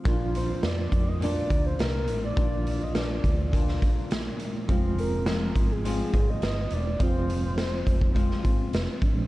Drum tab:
HH |x-x-x-x-x-x-x-x-|x-x-x-x-x-x-x-x-|x-x-x-x-x-x-x-x-|x-x-x-x-x-x-x-x-|
SD |----o-------o---|----o----o--o---|----o-------o---|----o----o--o---|
BD |o-----o---o-----|o-----o-o-o-----|o-----o---o-----|o-----ooo-o---o-|